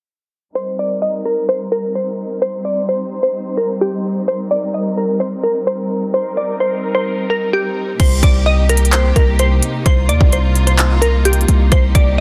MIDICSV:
0, 0, Header, 1, 5, 480
1, 0, Start_track
1, 0, Key_signature, -3, "minor"
1, 0, Tempo, 465116
1, 573, Time_signature, 4, 2, 24, 8
1, 12595, End_track
2, 0, Start_track
2, 0, Title_t, "Synth pluck"
2, 0, Program_c, 0, 84
2, 571, Note_on_c, 0, 72, 90
2, 766, Note_off_c, 0, 72, 0
2, 816, Note_on_c, 0, 74, 88
2, 1009, Note_off_c, 0, 74, 0
2, 1052, Note_on_c, 0, 75, 78
2, 1247, Note_off_c, 0, 75, 0
2, 1294, Note_on_c, 0, 70, 74
2, 1487, Note_off_c, 0, 70, 0
2, 1535, Note_on_c, 0, 72, 89
2, 1728, Note_off_c, 0, 72, 0
2, 1773, Note_on_c, 0, 70, 89
2, 1967, Note_off_c, 0, 70, 0
2, 2016, Note_on_c, 0, 72, 74
2, 2466, Note_off_c, 0, 72, 0
2, 2495, Note_on_c, 0, 72, 100
2, 2688, Note_off_c, 0, 72, 0
2, 2732, Note_on_c, 0, 74, 85
2, 2927, Note_off_c, 0, 74, 0
2, 2979, Note_on_c, 0, 72, 81
2, 3315, Note_off_c, 0, 72, 0
2, 3333, Note_on_c, 0, 72, 75
2, 3671, Note_off_c, 0, 72, 0
2, 3688, Note_on_c, 0, 70, 80
2, 3884, Note_off_c, 0, 70, 0
2, 3935, Note_on_c, 0, 67, 82
2, 4385, Note_off_c, 0, 67, 0
2, 4416, Note_on_c, 0, 72, 89
2, 4609, Note_off_c, 0, 72, 0
2, 4652, Note_on_c, 0, 74, 85
2, 4847, Note_off_c, 0, 74, 0
2, 4894, Note_on_c, 0, 75, 74
2, 5087, Note_off_c, 0, 75, 0
2, 5133, Note_on_c, 0, 70, 74
2, 5327, Note_off_c, 0, 70, 0
2, 5367, Note_on_c, 0, 72, 83
2, 5563, Note_off_c, 0, 72, 0
2, 5608, Note_on_c, 0, 70, 84
2, 5804, Note_off_c, 0, 70, 0
2, 5851, Note_on_c, 0, 72, 78
2, 6303, Note_off_c, 0, 72, 0
2, 6335, Note_on_c, 0, 72, 99
2, 6528, Note_off_c, 0, 72, 0
2, 6575, Note_on_c, 0, 74, 84
2, 6768, Note_off_c, 0, 74, 0
2, 6814, Note_on_c, 0, 72, 78
2, 7152, Note_off_c, 0, 72, 0
2, 7169, Note_on_c, 0, 72, 78
2, 7509, Note_off_c, 0, 72, 0
2, 7533, Note_on_c, 0, 70, 77
2, 7727, Note_off_c, 0, 70, 0
2, 7774, Note_on_c, 0, 67, 81
2, 8225, Note_off_c, 0, 67, 0
2, 8252, Note_on_c, 0, 72, 93
2, 8446, Note_off_c, 0, 72, 0
2, 8496, Note_on_c, 0, 74, 89
2, 8689, Note_off_c, 0, 74, 0
2, 8732, Note_on_c, 0, 75, 86
2, 8926, Note_off_c, 0, 75, 0
2, 8973, Note_on_c, 0, 70, 75
2, 9167, Note_off_c, 0, 70, 0
2, 9215, Note_on_c, 0, 72, 91
2, 9408, Note_off_c, 0, 72, 0
2, 9452, Note_on_c, 0, 70, 90
2, 9646, Note_off_c, 0, 70, 0
2, 9695, Note_on_c, 0, 72, 81
2, 10145, Note_off_c, 0, 72, 0
2, 10175, Note_on_c, 0, 72, 103
2, 10368, Note_off_c, 0, 72, 0
2, 10412, Note_on_c, 0, 74, 85
2, 10606, Note_off_c, 0, 74, 0
2, 10659, Note_on_c, 0, 72, 83
2, 10995, Note_off_c, 0, 72, 0
2, 11011, Note_on_c, 0, 72, 75
2, 11350, Note_off_c, 0, 72, 0
2, 11368, Note_on_c, 0, 70, 83
2, 11564, Note_off_c, 0, 70, 0
2, 11613, Note_on_c, 0, 67, 82
2, 12064, Note_off_c, 0, 67, 0
2, 12095, Note_on_c, 0, 72, 95
2, 12288, Note_off_c, 0, 72, 0
2, 12333, Note_on_c, 0, 74, 85
2, 12527, Note_off_c, 0, 74, 0
2, 12595, End_track
3, 0, Start_track
3, 0, Title_t, "String section"
3, 0, Program_c, 1, 48
3, 572, Note_on_c, 1, 55, 75
3, 572, Note_on_c, 1, 60, 67
3, 572, Note_on_c, 1, 70, 84
3, 573, Note_on_c, 1, 63, 73
3, 2473, Note_off_c, 1, 70, 0
3, 2491, Note_on_c, 1, 72, 86
3, 4393, Note_off_c, 1, 72, 0
3, 4412, Note_on_c, 1, 70, 87
3, 8211, Note_off_c, 1, 55, 0
3, 8211, Note_off_c, 1, 60, 0
3, 8211, Note_off_c, 1, 63, 0
3, 8214, Note_off_c, 1, 70, 0
3, 8252, Note_on_c, 1, 48, 80
3, 8252, Note_on_c, 1, 67, 87
3, 8253, Note_on_c, 1, 58, 74
3, 8253, Note_on_c, 1, 63, 74
3, 10153, Note_off_c, 1, 67, 0
3, 10173, Note_on_c, 1, 65, 91
3, 12074, Note_off_c, 1, 65, 0
3, 12091, Note_on_c, 1, 67, 88
3, 12595, Note_off_c, 1, 48, 0
3, 12595, Note_off_c, 1, 58, 0
3, 12595, Note_off_c, 1, 63, 0
3, 12595, Note_off_c, 1, 67, 0
3, 12595, End_track
4, 0, Start_track
4, 0, Title_t, "808-style bass"
4, 0, Program_c, 2, 38
4, 8253, Note_on_c, 2, 36, 114
4, 8483, Note_off_c, 2, 36, 0
4, 8492, Note_on_c, 2, 36, 105
4, 9414, Note_off_c, 2, 36, 0
4, 9453, Note_on_c, 2, 36, 106
4, 9914, Note_off_c, 2, 36, 0
4, 10173, Note_on_c, 2, 36, 109
4, 10412, Note_on_c, 2, 39, 101
4, 10427, Note_off_c, 2, 36, 0
4, 10526, Note_off_c, 2, 39, 0
4, 10533, Note_on_c, 2, 36, 98
4, 11812, Note_off_c, 2, 36, 0
4, 11852, Note_on_c, 2, 36, 101
4, 12083, Note_off_c, 2, 36, 0
4, 12093, Note_on_c, 2, 36, 113
4, 12323, Note_off_c, 2, 36, 0
4, 12332, Note_on_c, 2, 36, 104
4, 12595, Note_off_c, 2, 36, 0
4, 12595, End_track
5, 0, Start_track
5, 0, Title_t, "Drums"
5, 8253, Note_on_c, 9, 36, 111
5, 8253, Note_on_c, 9, 42, 74
5, 8253, Note_on_c, 9, 49, 103
5, 8356, Note_off_c, 9, 36, 0
5, 8356, Note_off_c, 9, 42, 0
5, 8356, Note_off_c, 9, 49, 0
5, 8492, Note_on_c, 9, 36, 99
5, 8494, Note_on_c, 9, 42, 65
5, 8595, Note_off_c, 9, 36, 0
5, 8597, Note_off_c, 9, 42, 0
5, 8973, Note_on_c, 9, 42, 62
5, 9053, Note_off_c, 9, 42, 0
5, 9053, Note_on_c, 9, 42, 63
5, 9133, Note_off_c, 9, 42, 0
5, 9133, Note_on_c, 9, 42, 62
5, 9212, Note_on_c, 9, 39, 120
5, 9213, Note_off_c, 9, 42, 0
5, 9213, Note_on_c, 9, 42, 84
5, 9315, Note_off_c, 9, 39, 0
5, 9316, Note_off_c, 9, 42, 0
5, 9453, Note_on_c, 9, 36, 95
5, 9454, Note_on_c, 9, 42, 87
5, 9556, Note_off_c, 9, 36, 0
5, 9557, Note_off_c, 9, 42, 0
5, 9692, Note_on_c, 9, 42, 76
5, 9795, Note_off_c, 9, 42, 0
5, 9933, Note_on_c, 9, 42, 83
5, 10036, Note_off_c, 9, 42, 0
5, 10173, Note_on_c, 9, 36, 117
5, 10173, Note_on_c, 9, 42, 74
5, 10276, Note_off_c, 9, 36, 0
5, 10276, Note_off_c, 9, 42, 0
5, 10414, Note_on_c, 9, 42, 67
5, 10517, Note_off_c, 9, 42, 0
5, 10533, Note_on_c, 9, 36, 98
5, 10636, Note_off_c, 9, 36, 0
5, 10655, Note_on_c, 9, 42, 83
5, 10758, Note_off_c, 9, 42, 0
5, 10893, Note_on_c, 9, 42, 62
5, 10996, Note_off_c, 9, 42, 0
5, 11013, Note_on_c, 9, 42, 63
5, 11117, Note_off_c, 9, 42, 0
5, 11132, Note_on_c, 9, 39, 116
5, 11133, Note_on_c, 9, 42, 83
5, 11235, Note_off_c, 9, 39, 0
5, 11236, Note_off_c, 9, 42, 0
5, 11374, Note_on_c, 9, 42, 86
5, 11477, Note_off_c, 9, 42, 0
5, 11612, Note_on_c, 9, 42, 75
5, 11693, Note_off_c, 9, 42, 0
5, 11693, Note_on_c, 9, 42, 63
5, 11773, Note_off_c, 9, 42, 0
5, 11773, Note_on_c, 9, 42, 45
5, 11852, Note_off_c, 9, 42, 0
5, 11852, Note_on_c, 9, 42, 91
5, 11955, Note_off_c, 9, 42, 0
5, 12093, Note_on_c, 9, 36, 114
5, 12093, Note_on_c, 9, 42, 72
5, 12196, Note_off_c, 9, 36, 0
5, 12196, Note_off_c, 9, 42, 0
5, 12332, Note_on_c, 9, 36, 94
5, 12333, Note_on_c, 9, 42, 67
5, 12435, Note_off_c, 9, 36, 0
5, 12436, Note_off_c, 9, 42, 0
5, 12595, End_track
0, 0, End_of_file